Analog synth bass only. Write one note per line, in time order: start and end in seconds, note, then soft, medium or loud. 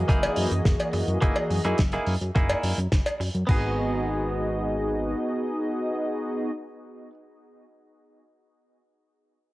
0.09 0.28 F#1 medium
0.37 0.47 F#2 medium
0.51 0.61 F#2 medium
0.65 0.75 F#1 loud
0.94 1.04 F#2 medium
1.08 1.18 F#2 medium
1.22 1.32 F#1 medium
1.50 1.60 F#2 medium
1.65 1.74 F#2 medium
1.79 1.98 F#1 medium
2.07 2.17 F#2 loud
2.21 2.31 F#2 medium
2.36 2.55 F#1 medium
2.63 2.73 F#2 medium
2.78 2.88 F#2 medium
2.92 3.02 F#1 medium
3.20 3.30 F#2 medium
3.35 3.44 F#2 medium
3.49 5.14 G#1 medium